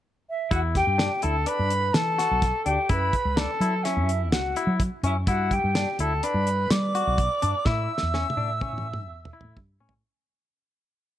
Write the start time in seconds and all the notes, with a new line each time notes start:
0.29 E5
0.51 E2 E4 F#4 F#5, kick, closed hi-hat
0.75 G4 G5, kick, snare, closed hi-hat
0.87 G2
0.98 D4, snare, closed hi-hat
1.22 D2 E4 A4 A5, closed hi-hat
1.46 D4 B4 B5, closed hi-hat
1.59 G2
1.70 closed hi-hat
1.93 E3 A4 A5, snare, closed hi-hat
2.18 F#4, snare, closed hi-hat
2.31 B1
2.42 kick, snare, closed hi-hat
2.65 D2 D4 G4 G5, closed hi-hat
2.89 F#2 E4 B4 B5, kick, closed hi-hat
3.13 kick, closed hi-hat
3.25 C#2
3.37 D4 A4 A5, snare, closed hi-hat
3.60 F#3 E4, closed hi-hat
3.83 C#4 E4 E5, snare, closed hi-hat
3.97 F#2
4.09 closed hi-hat
4.31 C#2 F#4 F#5, snare, closed hi-hat
4.56 E4, closed hi-hat
4.67 F#3
4.80 kick, closed hi-hat
5.03 F#2 C#4 E4 E5, closed hi-hat
5.27 G2 E4 F#4 F#5, kick, closed hi-hat
5.51 G4 G5, kick, closed hi-hat
5.64 G2
5.75 D4, snare, closed hi-hat
5.99 D2 E4 A4 A5, closed hi-hat
6.23 D4 B4 B5, closed hi-hat
6.34 G2
6.47 closed hi-hat
6.70 G3 D5 D6, snare, closed hi-hat
6.95 F#4, closed hi-hat
7.07 B1
7.18 kick, closed hi-hat
7.42 G2 D4, closed hi-hat
7.65 A2 E4 E5 E6, kick, snare
7.98 snare
8.03 E2
8.14 C#4, snare
8.30 high tom
8.37 A2 D4
8.61 C#4, kick, high tom
8.73 A2
8.78 mid tom
8.93 mid tom
9.08 E2
9.25 mid tom
9.33 E4
9.41 A2, mid tom
9.57 G2, kick, floor tom
9.80 A2 C#4
9.89 floor tom